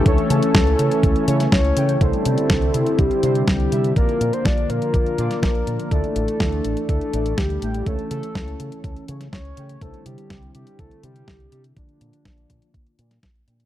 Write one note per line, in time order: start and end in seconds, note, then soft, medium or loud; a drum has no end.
0.00 1.97 E3 medium
0.00 1.97 A3 medium
0.00 1.97 A4 medium
0.06 0.15 C#2 loud
0.06 1.25 A3 medium
0.06 1.26 C#4 medium
0.06 1.99 C#4 medium
0.06 1.25 E4 medium
0.06 0.30 A4 loud
0.06 1.25 C#5 medium
0.06 kick loud
0.06 closed hi-hat medium
0.18 closed hi-hat soft
0.30 0.40 C#3 loud
0.30 1.24 A4 medium
0.30 closed hi-hat medium
0.43 closed hi-hat medium
0.55 0.73 C#2 loud
0.55 kick loud
0.55 snare loud
0.55 closed hi-hat soft
0.67 closed hi-hat soft
0.79 0.88 C#3 medium
0.79 closed hi-hat medium
0.91 closed hi-hat medium
1.03 1.13 C#2 medium
1.03 kick loud
1.03 closed hi-hat medium
1.16 closed hi-hat soft
1.28 1.47 C#3 loud
1.28 1.47 A3 medium
1.28 1.47 C#4 medium
1.28 1.47 E4 medium
1.28 1.47 C#5 medium
1.28 closed hi-hat medium
1.40 snare soft
1.40 closed hi-hat medium
1.52 1.71 C#2 medium
1.52 2.03 C#5 loud
1.52 kick loud
1.52 snare loud
1.52 closed hi-hat soft
1.65 closed hi-hat soft
1.77 1.95 C#3 medium
1.77 1.98 A3 medium
1.77 1.98 C#4 medium
1.77 1.98 E4 medium
1.77 1.98 G5 medium
1.77 closed hi-hat medium
1.89 closed hi-hat medium
2.01 2.10 C2 loud
2.01 5.87 D3 medium
2.01 3.94 G3 medium
2.01 3.21 G3 medium
2.01 3.94 C4 medium
2.01 3.21 D4 medium
2.01 3.94 E4 medium
2.01 3.21 E4 medium
2.01 3.00 A4 loud
2.01 3.21 C5 medium
2.01 kick loud
2.01 closed hi-hat soft
2.13 closed hi-hat soft
2.25 2.35 C3 medium
2.25 closed hi-hat medium
2.38 closed hi-hat medium
2.50 2.69 C2 loud
2.50 kick loud
2.50 snare loud
2.50 closed hi-hat soft
2.62 closed hi-hat soft
2.74 2.84 C3 medium
2.74 closed hi-hat medium
2.86 closed hi-hat medium
2.99 3.08 C2 medium
2.99 3.47 G4 loud
2.99 kick loud
2.99 closed hi-hat medium
3.11 closed hi-hat soft
3.23 3.42 C3 loud
3.23 3.43 G3 medium
3.23 3.43 D4 medium
3.23 3.43 E4 medium
3.23 3.43 C5 medium
3.23 closed hi-hat medium
3.35 closed hi-hat soft
3.48 3.66 C2 medium
3.48 3.93 G4 medium
3.48 kick loud
3.48 snare loud
3.48 closed hi-hat soft
3.60 closed hi-hat soft
3.72 3.91 C3 medium
3.72 3.93 G3 medium
3.72 3.93 D4 medium
3.72 3.93 E4 medium
3.72 3.93 E5 medium
3.72 closed hi-hat medium
3.84 closed hi-hat soft
3.96 4.06 A#1 loud
3.96 5.89 F3 medium
3.96 5.89 A#3 medium
3.96 5.16 A#3 medium
3.96 5.16 D4 medium
3.96 5.89 F4 medium
3.96 5.16 F4 medium
3.96 4.35 A#4 loud
3.96 5.16 D5 medium
3.96 kick loud
3.96 closed hi-hat soft
4.09 closed hi-hat soft
4.21 4.30 A#2 medium
4.21 closed hi-hat medium
4.33 4.47 C5 loud
4.33 closed hi-hat soft
4.45 4.64 A#1 loud
4.45 4.71 D5 loud
4.45 kick loud
4.45 snare loud
4.45 closed hi-hat soft
4.58 closed hi-hat soft
4.69 4.79 A#2 medium
4.69 5.42 A#4 loud
4.69 closed hi-hat medium
4.82 closed hi-hat soft
4.94 5.03 A#1 medium
4.94 kick loud
4.94 closed hi-hat soft
5.06 closed hi-hat soft
5.18 5.28 A#2 loud
5.18 5.40 A#3 loud
5.18 5.40 D4 medium
5.18 5.40 F4 medium
5.18 5.40 D5 loud
5.18 closed hi-hat medium
5.31 snare soft
5.31 closed hi-hat soft
5.43 5.61 A#1 medium
5.43 5.89 A#3 medium
5.43 5.89 D4 medium
5.43 5.89 F4 medium
5.43 5.93 A#4 loud
5.43 5.89 D5 medium
5.43 kick loud
5.43 snare loud
5.43 closed hi-hat soft
5.55 closed hi-hat soft
5.67 5.76 A#2 medium
5.67 closed hi-hat medium
5.80 closed hi-hat soft
5.91 6.01 D2 medium
5.91 9.78 E3 medium
5.91 7.11 A3 medium
5.91 9.78 A3 medium
5.91 7.11 D4 medium
5.91 7.85 D4 medium
5.91 7.11 E4 medium
5.91 6.89 A4 loud
5.91 9.78 A4 medium
5.91 7.11 D5 medium
5.91 kick loud
5.91 closed hi-hat soft
6.04 closed hi-hat soft
6.16 6.25 A1 medium
6.16 closed hi-hat medium
6.28 closed hi-hat soft
6.40 6.59 D2 loud
6.40 kick loud
6.40 snare loud
6.40 closed hi-hat soft
6.52 closed hi-hat soft
6.64 6.74 A1 medium
6.64 closed hi-hat medium
6.77 closed hi-hat soft
6.89 6.98 D2 medium
6.89 7.39 A4 loud
6.89 kick loud
6.89 closed hi-hat soft
7.01 closed hi-hat soft
7.13 7.32 A1 medium
7.13 7.33 A3 medium
7.13 7.33 D4 medium
7.13 7.33 E4 medium
7.13 7.33 D5 medium
7.13 closed hi-hat medium
7.26 closed hi-hat soft
7.38 7.56 D2 medium
7.38 7.88 G4 medium
7.38 kick loud
7.38 snare loud
7.38 closed hi-hat soft
7.50 closed hi-hat soft
7.62 7.81 A1 medium
7.62 7.84 A3 medium
7.62 7.84 D4 medium
7.62 7.84 E4 medium
7.62 7.84 G5 medium
7.62 closed hi-hat medium
7.74 closed hi-hat soft
7.86 7.96 C#2 loud
7.86 9.06 A3 medium
7.86 9.06 C#4 medium
7.86 9.80 C#4 medium
7.86 9.06 E4 medium
7.86 8.10 A4 loud
7.86 9.06 C#5 medium
7.86 kick loud
7.86 closed hi-hat soft
7.99 closed hi-hat soft
8.11 8.20 C#3 medium
8.11 9.04 A4 medium
8.11 closed hi-hat medium
8.23 closed hi-hat soft
8.35 8.54 C#2 loud
8.35 kick loud
8.35 snare loud
8.35 closed hi-hat soft
8.48 closed hi-hat soft
8.60 8.69 C#3 medium
8.60 closed hi-hat medium
8.72 closed hi-hat soft
8.84 8.93 C#2 medium
8.84 kick loud
8.84 closed hi-hat soft
8.96 closed hi-hat soft
9.08 9.27 C#3 loud
9.08 9.28 A3 medium
9.08 9.28 C#4 medium
9.08 9.28 E4 medium
9.08 9.28 C#5 medium
9.08 closed hi-hat medium
9.21 snare soft
9.21 closed hi-hat soft
9.33 9.52 C#2 medium
9.33 9.83 C#5 loud
9.33 kick loud
9.33 snare loud
9.33 closed hi-hat soft
9.45 closed hi-hat soft
9.57 9.76 C#3 medium
9.57 9.79 A3 medium
9.57 9.79 C#4 medium
9.57 9.79 E4 medium
9.57 9.79 G5 medium
9.57 closed hi-hat medium
9.69 closed hi-hat soft
9.81 9.91 C2 loud
9.81 13.65 D3 medium
9.81 11.75 G3 medium
9.81 11.01 G3 medium
9.81 11.75 C4 medium
9.81 11.01 D4 medium
9.81 11.01 E4 medium
9.81 11.75 E4 medium
9.81 10.05 A4 loud
9.81 11.01 C5 medium
9.81 kick loud
9.81 closed hi-hat medium
9.94 closed hi-hat soft
10.06 10.15 C3 medium
10.06 10.51 G4 loud
10.06 closed hi-hat medium
10.18 closed hi-hat medium
10.30 10.49 C2 loud
10.30 kick loud
10.30 snare loud
10.30 closed hi-hat medium
10.42 closed hi-hat soft
10.55 10.64 C3 medium
10.55 10.81 G4 medium
10.55 closed hi-hat medium
10.67 closed hi-hat medium
10.79 10.88 C2 medium
10.79 11.05 A4 loud
10.79 kick loud
10.79 closed hi-hat medium
10.91 closed hi-hat soft
11.03 11.22 C3 medium
11.03 11.23 G3 medium
11.03 11.23 D4 medium
11.03 11.23 E4 medium
11.03 11.52 G4 loud
11.03 11.23 C5 medium
11.03 closed hi-hat medium
11.16 closed hi-hat soft
11.28 11.47 C2 medium
11.28 kick loud
11.28 snare loud
11.28 closed hi-hat soft
11.40 closed hi-hat soft
11.52 11.71 C3 medium
11.52 11.74 G3 medium
11.52 11.74 D4 medium
11.52 11.74 E4 medium
11.52 11.63 G4 medium
11.52 11.74 E5 medium
11.52 closed hi-hat medium
11.64 closed hi-hat medium
11.77 11.86 A#1 medium
11.77 13.65 F3 medium
11.77 12.96 A#3 medium
11.77 13.65 A#3 medium
11.77 12.96 D4 medium
11.77 13.19 D4 medium
11.77 12.96 F4 medium
11.77 13.65 F4 medium
11.77 12.96 D5 medium
11.77 kick loud
11.77 closed hi-hat medium
11.89 closed hi-hat soft
12.01 12.10 A#2 medium
12.01 closed hi-hat medium
12.13 closed hi-hat soft
12.25 12.44 A#1 loud
12.25 kick loud
12.25 snare loud
12.25 closed hi-hat soft
12.38 closed hi-hat soft
12.50 12.59 A#2 medium
12.50 kick medium
12.50 closed hi-hat medium
12.62 closed hi-hat medium
12.74 12.84 A#1 medium
12.74 kick loud
12.74 closed hi-hat medium
12.87 closed hi-hat soft
12.99 13.17 A#2 medium
12.99 13.18 A#3 medium
12.99 13.18 D4 medium
12.99 13.18 F4 medium
12.99 13.18 D5 medium
12.99 closed hi-hat medium
13.11 snare soft
13.11 closed hi-hat soft
13.23 13.42 A#1 medium
13.23 kick loud
13.23 snare loud
13.23 closed hi-hat medium
13.35 closed hi-hat soft
13.47 13.65 A#2 medium
13.47 13.65 A#3 medium
13.47 13.65 D4 medium
13.47 13.65 F4 medium
13.47 13.65 G5 medium
13.47 closed hi-hat medium
13.60 closed hi-hat medium